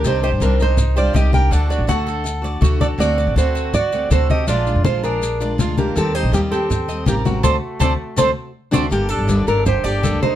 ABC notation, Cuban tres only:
X:1
M:4/4
L:1/8
Q:1/4=162
K:Gm
V:1 name="Cuban tres"
G c2 z2 c G2 | D2 ^F A2 d F A- | A d2 ^F2 d A2 | D2 F _A2 d F B- |
B e2 G2 e B2 | [Acd] z [Acd] z [Acd] z2 [Acd] | z A d A2 G A2 |]